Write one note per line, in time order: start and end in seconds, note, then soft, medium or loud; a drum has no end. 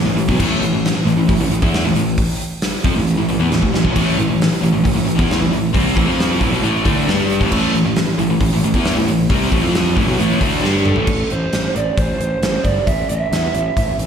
0.05 0.16 A1 medium
0.05 0.15 A2 medium
0.05 0.16 E3 medium
0.16 0.27 A1 medium
0.16 0.28 A2 medium
0.16 0.28 E3 medium
0.16 open hi-hat medium
0.29 0.39 B1 loud
0.29 0.39 B2 medium
0.29 0.39 F#3 medium
0.29 kick loud
0.39 0.60 A1 medium
0.39 0.60 A2 medium
0.39 0.61 E3 medium
0.39 0.62 A3 loud
0.39 kick loud
0.39 crash loud
0.61 0.72 A1 medium
0.61 0.71 A2 medium
0.61 0.72 E3 medium
0.61 open hi-hat medium
0.72 0.94 A1 medium
0.72 0.91 A2 medium
0.72 0.91 E3 medium
0.85 snare loud
0.85 open hi-hat medium
1.05 1.16 A1 medium
1.05 1.17 A2 medium
1.05 1.17 E3 medium
1.05 open hi-hat medium
1.17 1.28 A1 medium
1.17 1.28 A2 medium
1.17 1.28 E3 medium
1.29 1.39 A1 medium
1.29 1.40 A2 medium
1.29 1.40 E3 medium
1.29 kick loud
1.29 open hi-hat medium
1.40 1.50 A1 medium
1.40 1.50 A2 medium
1.40 1.50 E3 medium
1.50 1.61 A1 medium
1.50 1.62 A2 medium
1.50 1.61 E3 medium
1.50 open hi-hat medium
1.62 1.83 E2 loud
1.62 1.84 E3 medium
1.62 1.84 B3 medium
1.62 1.85 E4 loud
1.62 kick loud
1.74 snare loud
1.74 open hi-hat medium
1.84 1.94 A1 medium
1.84 1.95 A2 medium
1.84 1.95 E3 medium
1.95 2.16 A1 medium
1.95 2.14 A2 medium
1.95 2.14 E3 medium
1.95 open hi-hat medium
2.18 kick loud
2.18 open hi-hat medium
2.41 open hi-hat medium
2.62 snare loud
2.62 open hi-hat medium
2.84 2.95 F2 medium
2.84 2.95 F3 medium
2.84 2.95 C4 loud
2.84 kick loud
2.84 open hi-hat medium
2.96 3.17 A1 medium
2.96 3.13 A2 medium
2.96 3.14 E3 medium
3.07 open hi-hat medium
3.17 3.29 A1 medium
3.17 3.27 A2 medium
3.17 3.28 E3 medium
3.29 3.40 A1 medium
3.29 3.39 A2 medium
3.29 3.38 E3 medium
3.29 open hi-hat medium
3.39 3.50 E2 loud
3.39 3.50 E3 medium
3.39 3.50 B3 medium
3.50 3.62 A1 medium
3.50 3.60 A2 medium
3.50 3.61 E3 medium
3.50 snare medium
3.62 3.73 A1 medium
3.62 3.72 A2 medium
3.62 3.72 E3 medium
3.62 kick medium
3.73 3.84 A1 medium
3.73 3.83 A2 medium
3.73 3.84 E3 medium
3.73 snare medium
3.84 3.95 B1 medium
3.84 3.94 B2 medium
3.84 3.95 F#3 loud
3.84 kick medium
3.95 4.17 A1 medium
3.95 4.16 A2 medium
3.95 4.17 E3 medium
3.95 4.17 A3 loud
3.95 kick loud
3.95 open hi-hat medium
3.95 crash loud
4.17 4.28 A1 medium
4.17 4.27 A2 medium
4.17 4.28 E3 medium
4.17 open hi-hat medium
4.29 4.50 A1 medium
4.29 4.47 A2 medium
4.29 4.47 E3 medium
4.42 snare loud
4.42 open hi-hat medium
4.61 4.73 A1 medium
4.61 4.71 A2 medium
4.61 4.72 E3 medium
4.61 open hi-hat medium
4.72 4.84 A1 medium
4.72 4.82 A2 medium
4.72 4.83 E3 medium
4.84 4.95 A1 medium
4.84 4.93 A2 medium
4.84 4.94 E3 medium
4.84 kick medium
4.84 open hi-hat medium
4.95 5.06 A1 medium
4.95 5.04 A2 medium
4.95 5.04 E3 medium
5.05 5.18 A1 medium
5.05 5.15 A2 medium
5.05 5.14 E3 medium
5.05 open hi-hat medium
5.15 5.37 E3 medium
5.15 5.38 B3 medium
5.15 5.39 E4 loud
5.15 kick loud
5.19 5.40 E2 loud
5.19 snare soft
5.31 snare loud
5.31 open hi-hat medium
5.38 5.51 A1 medium
5.38 5.50 A2 medium
5.38 5.50 E3 medium
5.51 5.72 A1 medium
5.51 5.69 A2 medium
5.51 5.69 E3 medium
5.51 open hi-hat medium
5.73 5.95 C2 loud
5.73 5.94 C3 medium
5.73 5.95 G3 medium
5.73 5.95 C4 loud
5.73 kick loud
5.73 open hi-hat medium
5.95 6.07 A1 medium
5.95 6.06 A2 medium
5.95 6.06 E3 loud
5.95 kick loud
5.95 open hi-hat medium
6.07 6.38 F2 loud
6.07 6.39 F3 medium
6.07 6.40 C4 medium
6.07 6.40 F4 loud
6.20 snare loud
6.20 open hi-hat medium
6.39 6.51 A1 medium
6.39 6.50 A2 loud
6.39 6.51 E3 loud
6.39 kick loud
6.39 open hi-hat medium
6.51 6.62 B1 medium
6.51 6.62 B2 medium
6.51 6.62 F#3 loud
6.62 6.84 A1 loud
6.62 6.84 A2 loud
6.62 6.84 E3 loud
6.62 6.84 A3 loud
6.62 open hi-hat medium
6.84 7.06 D2 loud
6.84 7.06 D3 medium
6.84 7.06 A3 loud
6.84 7.06 D4 loud
6.84 kick loud
6.84 open hi-hat medium
7.07 7.38 G2 medium
7.07 7.40 G3 medium
7.07 7.40 D4 loud
7.07 7.40 G4 loud
7.07 snare loud
7.07 open hi-hat medium
7.29 open hi-hat medium
7.39 7.51 A1 medium
7.39 7.49 A2 medium
7.39 7.50 E3 loud
7.39 kick loud
7.51 7.73 A1 loud
7.51 7.72 A2 medium
7.51 7.72 E3 medium
7.51 7.73 A3 loud
7.51 kick loud
7.51 crash loud
7.74 7.84 A1 medium
7.74 7.84 A2 medium
7.74 7.84 E3 medium
7.74 open hi-hat medium
7.85 8.06 A1 medium
7.85 8.03 A2 medium
7.85 8.03 E3 medium
7.96 snare loud
7.96 open hi-hat medium
8.18 8.29 A1 medium
8.18 8.29 A2 medium
8.18 8.29 E3 medium
8.18 open hi-hat medium
8.29 8.40 A1 medium
8.29 8.39 A2 medium
8.29 8.40 E3 medium
8.41 8.51 A1 medium
8.41 8.52 A2 medium
8.41 8.52 E3 medium
8.41 kick medium
8.41 open hi-hat medium
8.52 8.62 A1 medium
8.52 8.63 A2 medium
8.52 8.63 E3 medium
8.63 8.73 A1 medium
8.63 8.75 A2 medium
8.63 8.74 E3 medium
8.63 open hi-hat medium
8.74 8.95 E2 loud
8.74 8.96 E3 medium
8.74 8.96 B3 medium
8.74 8.97 E4 medium
8.74 kick loud
8.85 snare loud
8.85 open hi-hat medium
8.97 9.07 A1 medium
8.97 9.08 A2 medium
8.97 9.09 E3 medium
9.08 9.28 A1 medium
9.08 9.26 A2 medium
9.08 9.26 E3 medium
9.08 open hi-hat medium
9.30 9.51 C2 medium
9.30 9.52 C3 medium
9.30 9.52 G3 medium
9.30 9.52 C4 medium
9.30 kick loud
9.30 open hi-hat medium
9.52 9.63 A1 medium
9.52 9.62 A2 medium
9.52 9.62 E3 loud
9.52 kick loud
9.52 open hi-hat medium
9.62 9.94 F2 loud
9.62 9.95 F3 medium
9.62 9.96 C4 medium
9.62 9.96 F4 loud
9.75 snare loud
9.75 open hi-hat medium
9.95 10.06 A1 medium
9.95 10.06 A2 medium
9.95 10.07 E3 medium
9.95 kick loud
9.95 open hi-hat medium
10.07 10.17 B1 medium
10.07 10.17 B2 medium
10.07 10.18 F#3 loud
10.18 10.40 A1 loud
10.18 10.39 A2 loud
10.18 10.40 E3 medium
10.18 10.39 A3 loud
10.18 open hi-hat medium
10.40 10.62 D2 medium
10.40 10.62 D3 medium
10.40 10.60 A3 loud
10.40 10.60 D4 loud
10.40 kick medium
10.61 10.95 G2 medium
10.61 10.95 G3 loud
10.61 10.95 D4 loud
10.61 10.95 G4 medium
10.61 snare medium
10.85 11.32 A4 medium
10.85 mid tom medium
10.95 11.07 A1 medium
10.95 11.06 A2 medium
10.95 11.07 E3 loud
10.95 floor tom medium
11.07 11.22 A1 medium
11.07 kick loud
11.07 crash loud
11.30 11.45 A1 medium
11.30 11.72 C5 medium
11.30 closed hi-hat medium
11.53 11.67 A1 medium
11.53 snare loud
11.53 closed hi-hat medium
11.75 11.89 A1 medium
11.75 11.96 D5 medium
11.75 closed hi-hat medium
11.97 12.12 A1 loud
11.97 12.18 C5 medium
11.97 kick loud
11.97 closed hi-hat medium
12.19 12.34 A1 medium
12.19 12.63 C5 medium
12.19 closed hi-hat medium
12.42 12.56 A1 medium
12.42 snare loud
12.42 closed hi-hat medium
12.64 12.79 G1 medium
12.64 12.87 D5 medium
12.64 kick medium
12.64 closed hi-hat medium
12.86 13.01 A1 medium
12.86 13.09 E5 loud
12.86 kick loud
12.86 closed hi-hat medium
13.09 13.24 A1 medium
13.09 14.07 E5 medium
13.09 closed hi-hat medium
13.32 13.46 E2 medium
13.32 snare loud
13.32 closed hi-hat medium
13.54 13.68 A1 medium
13.54 closed hi-hat medium
13.77 13.91 A1 medium
13.77 kick loud
13.77 closed hi-hat medium
13.98 14.07 A1 medium
13.98 closed hi-hat medium